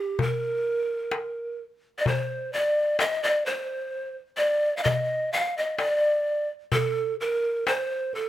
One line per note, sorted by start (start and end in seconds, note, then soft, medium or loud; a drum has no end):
0.00 0.23 G4 medium
0.19 1.60 A#4 medium
0.19 darbuka dum medium
1.12 darbuka tek medium
1.99 2.09 D5 medium
2.06 2.54 C5 medium
2.06 darbuka dum medium
2.53 3.01 D5 medium
2.99 3.25 D#5 medium
2.99 darbuka tek medium
3.23 3.47 D5 medium
3.46 4.16 C5 medium
4.37 4.78 D5 medium
4.77 4.85 F5 medium
4.83 5.34 D#5 medium
4.83 darbuka dum medium
5.33 5.59 F5 medium
5.57 5.80 D#5 medium
5.78 6.48 D5 medium
5.78 darbuka tek medium
6.72 7.16 A4 medium
6.72 darbuka dum medium
7.20 7.68 A#4 medium
7.67 8.16 C5 medium
7.67 darbuka tek medium
8.13 8.29 A4 medium
8.13 darbuka ka soft